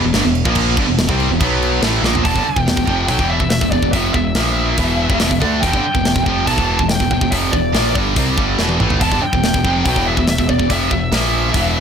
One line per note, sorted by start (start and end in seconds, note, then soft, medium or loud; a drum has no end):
0.03 0.13 E1 medium
0.03 0.14 E2 medium
0.03 0.14 B2 medium
0.14 0.24 G1 medium
0.14 0.24 G2 loud
0.14 0.24 D3 loud
0.14 snare loud
0.14 crash medium
0.25 0.44 E1 medium
0.25 0.42 E2 medium
0.25 0.42 B2 medium
0.35 crash medium
0.45 0.75 A#1 loud
0.45 0.76 A#2 medium
0.45 0.77 F3 loud
0.45 0.77 A#3 medium
0.45 kick loud
0.55 kick loud
0.55 crash medium
0.77 0.87 G1 medium
0.77 0.87 G2 medium
0.77 0.88 D3 loud
0.77 kick loud
0.77 crash medium
0.88 0.97 E1 medium
0.88 0.98 E2 medium
0.88 0.99 B2 medium
0.98 1.08 E1 medium
0.98 1.09 E2 medium
0.98 1.09 B2 medium
0.98 snare loud
0.98 crash medium
1.09 1.29 C2 medium
1.09 1.29 C3 medium
1.09 1.30 G3 medium
1.09 1.30 C4 medium
1.09 kick loud
1.20 crash medium
1.29 1.39 E1 medium
1.29 1.41 E2 medium
1.29 1.40 B2 medium
1.41 1.80 B1 medium
1.41 1.82 B2 medium
1.41 1.83 F#3 loud
1.41 1.83 B3 loud
1.41 kick loud
1.41 crash medium
1.62 crash medium
1.82 2.01 A1 medium
1.82 2.03 A2 loud
1.82 2.04 E3 loud
1.82 2.04 A3 medium
1.82 snare loud
1.82 crash medium
2.02 2.23 A#1 loud
2.02 2.24 A#2 medium
2.02 2.25 F3 medium
2.02 2.25 A#3 loud
2.02 snare medium
2.15 floor tom loud
2.24 2.35 E1 medium
2.24 2.35 E2 medium
2.24 2.35 B2 loud
2.24 2.44 A5 loud
2.24 kick loud
2.24 open hi-hat medium
2.36 2.44 G1 medium
2.36 2.46 G2 medium
2.36 2.46 D3 medium
2.36 kick medium
2.45 3.06 G5 loud
2.45 muted distorted electric guitar stroke medium
2.56 2.66 E1 medium
2.56 2.68 E2 medium
2.56 2.68 B2 medium
2.56 kick medium
2.67 2.76 E1 medium
2.67 2.78 E2 medium
2.67 2.78 B2 medium
2.67 snare loud
2.67 open hi-hat medium
2.77 2.86 E1 medium
2.77 2.88 E2 medium
2.77 2.89 B2 medium
2.77 kick loud
2.87 3.07 F1 medium
2.87 3.09 F2 medium
2.87 3.09 C3 medium
2.87 3.10 F3 medium
2.87 kick medium
3.08 3.19 B1 medium
3.08 3.19 B2 medium
3.08 3.20 F#3 loud
3.08 3.30 G5 medium
3.08 kick medium
3.08 open hi-hat medium
3.19 3.39 E1 medium
3.19 3.41 E2 medium
3.19 3.41 B2 loud
3.19 3.42 E3 loud
3.19 kick medium
3.29 3.49 E5 medium
3.40 3.60 E1 medium
3.40 3.59 E2 medium
3.40 3.59 B2 medium
3.40 kick medium
3.50 3.70 E5 medium
3.50 snare loud
3.50 open hi-hat medium
3.61 3.72 E1 medium
3.61 3.72 E2 medium
3.61 3.73 B2 medium
3.61 kick medium
3.71 3.81 E1 medium
3.71 3.82 E2 medium
3.71 3.83 B2 medium
3.71 3.92 D5 medium
3.71 kick medium
3.82 3.92 E1 medium
3.82 3.94 E2 medium
3.82 3.94 B2 medium
3.82 kick medium
3.92 4.13 F1 medium
3.92 4.15 F2 loud
3.92 4.15 C3 medium
3.92 4.15 F3 loud
3.92 4.12 E5 medium
3.92 kick loud
3.92 open hi-hat medium
4.14 4.34 E1 medium
4.14 4.33 E2 medium
4.14 4.33 B2 medium
4.14 5.37 E5 medium
4.14 kick medium
4.35 4.75 A#1 medium
4.35 4.78 A#2 medium
4.35 4.78 F3 medium
4.35 4.78 A#3 medium
4.35 snare loud
4.35 open hi-hat medium
4.78 5.08 E1 loud
4.78 5.09 E2 medium
4.78 5.10 B2 loud
4.78 5.10 E3 loud
4.78 kick medium
4.78 open hi-hat medium
5.09 5.19 F1 loud
5.09 5.20 F2 medium
5.09 5.21 C3 loud
5.09 kick loud
5.20 5.30 E1 medium
5.20 5.30 E2 medium
5.20 5.31 B2 loud
5.20 snare loud
5.20 open hi-hat medium
5.31 5.41 E1 medium
5.31 5.42 E2 medium
5.31 5.40 B2 medium
5.31 kick medium
5.40 5.61 D2 loud
5.40 5.62 D3 medium
5.40 5.62 A3 loud
5.40 5.63 D4 loud
5.40 kick medium
5.61 5.73 E1 loud
5.61 5.73 E2 loud
5.61 5.73 B2 loud
5.61 6.23 G5 medium
5.61 kick loud
5.61 open hi-hat medium
5.73 5.82 G1 medium
5.73 5.84 G2 medium
5.73 5.85 D3 medium
5.73 kick medium
5.85 muted distorted electric guitar stroke medium
5.95 6.03 E1 medium
5.95 6.06 E2 medium
5.95 6.06 B2 medium
5.95 kick loud
6.04 6.14 E1 medium
6.04 6.17 E2 medium
6.04 6.17 B2 medium
6.04 snare loud
6.04 open hi-hat medium
6.16 6.25 E1 medium
6.16 6.27 E2 medium
6.16 6.27 B2 medium
6.16 kick loud
6.24 6.46 F1 medium
6.24 6.47 F2 medium
6.24 6.45 G5 medium
6.24 kick medium
6.28 6.48 C3 medium
6.28 6.48 F3 medium
6.46 6.57 B1 medium
6.46 6.58 B2 loud
6.46 6.59 F#3 loud
6.46 6.89 A5 medium
6.46 kick loud
6.46 open hi-hat medium
6.58 6.78 E1 loud
6.58 6.79 E2 medium
6.58 6.80 B2 medium
6.58 6.80 E3 loud
6.58 kick medium
6.79 6.99 E1 medium
6.79 6.97 E2 medium
6.79 6.97 B2 medium
6.79 kick medium
6.89 7.10 G5 medium
6.89 snare loud
6.89 open hi-hat medium
7.00 7.10 E1 medium
7.00 7.12 E2 medium
7.00 7.12 B2 medium
7.00 kick medium
7.11 7.20 E1 medium
7.11 7.21 E2 medium
7.11 7.21 B2 medium
7.11 7.33 G5 medium
7.11 kick medium
7.21 7.31 E1 medium
7.21 7.31 E2 medium
7.21 7.32 B2 medium
7.21 kick medium
7.31 7.52 F1 medium
7.31 7.52 F2 medium
7.31 7.53 C3 medium
7.31 7.53 F3 loud
7.31 7.37 E5 medium
7.31 kick loud
7.31 open hi-hat medium
7.52 7.73 E1 medium
7.52 7.71 E2 medium
7.52 7.71 B2 medium
7.52 7.92 D5 medium
7.52 kick loud
7.74 7.94 A#1 medium
7.74 7.95 A#2 medium
7.74 7.95 F3 medium
7.74 7.95 A#3 medium
7.74 snare loud
7.74 open hi-hat medium
7.94 8.15 G1 medium
7.94 8.15 G2 medium
7.94 8.16 D3 medium
7.94 8.16 G3 loud
7.94 kick loud
8.16 8.36 C2 medium
8.16 8.37 C3 loud
8.16 8.37 G3 medium
8.16 8.38 C4 loud
8.16 kick loud
8.16 open hi-hat medium
8.37 8.57 G1 medium
8.37 8.58 G2 medium
8.37 8.58 D3 medium
8.37 8.59 G3 medium
8.37 kick loud
8.59 8.78 E1 medium
8.59 8.79 E2 medium
8.59 8.79 B2 medium
8.59 8.80 E3 loud
8.59 snare medium
8.69 high tom medium
8.80 8.99 A1 loud
8.80 9.00 A2 medium
8.80 9.01 E3 medium
8.80 9.01 A3 loud
8.80 mid tom medium
8.90 floor tom medium
9.00 9.11 E1 medium
9.00 9.10 E2 loud
9.00 9.11 B2 loud
9.00 9.22 A5 loud
9.00 kick loud
9.00 open hi-hat medium
9.11 9.21 G1 loud
9.11 9.21 G2 medium
9.11 9.22 D3 medium
9.11 kick medium
9.22 9.81 G5 loud
9.22 muted distorted electric guitar stroke medium
9.33 9.41 E1 medium
9.33 9.43 E2 medium
9.33 9.43 B2 medium
9.33 kick medium
9.42 9.52 E1 medium
9.42 9.54 E2 medium
9.42 9.54 B2 medium
9.42 snare loud
9.42 open hi-hat medium
9.54 9.64 E1 medium
9.54 9.64 E2 medium
9.54 9.65 B2 medium
9.54 kick loud
9.65 9.84 F1 medium
9.65 9.85 F2 medium
9.65 9.85 C3 medium
9.65 9.85 F3 medium
9.65 kick medium
9.85 9.95 B1 medium
9.85 9.95 B2 medium
9.85 9.96 F#3 loud
9.85 10.05 G5 loud
9.85 kick loud
9.85 open hi-hat medium
9.96 10.15 E1 loud
9.96 10.16 E2 medium
9.96 10.17 B2 loud
9.96 10.17 E3 loud
9.96 kick medium
10.06 10.28 E5 medium
10.17 10.37 E1 medium
10.17 10.34 E2 medium
10.17 10.34 B2 medium
10.17 kick medium
10.27 10.49 E5 medium
10.27 snare loud
10.27 open hi-hat medium
10.38 10.48 E1 medium
10.38 10.48 E2 medium
10.38 10.49 B2 medium
10.38 kick medium
10.49 10.58 E1 medium
10.49 10.59 E2 medium
10.49 10.60 B2 medium
10.49 10.70 D5 medium
10.49 kick medium
10.59 10.69 E1 medium
10.59 10.70 E2 medium
10.59 10.70 B2 medium
10.59 kick medium
10.70 10.89 F1 loud
10.70 10.91 F2 loud
10.70 10.91 C3 loud
10.70 10.91 F3 loud
10.70 10.90 E5 medium
10.70 kick loud
10.70 open hi-hat medium
10.91 11.10 E1 medium
10.91 11.08 E2 medium
10.91 11.08 B2 medium
10.91 11.80 E5 loud
10.91 kick medium
11.12 11.51 A#1 medium
11.12 11.54 A#2 medium
11.12 11.54 F3 medium
11.12 11.54 A#3 medium
11.12 snare loud
11.12 open hi-hat medium
11.54 11.80 E1 medium
11.54 11.80 E2 medium
11.54 11.80 B2 loud
11.54 11.80 E3 loud
11.54 kick loud
11.54 open hi-hat medium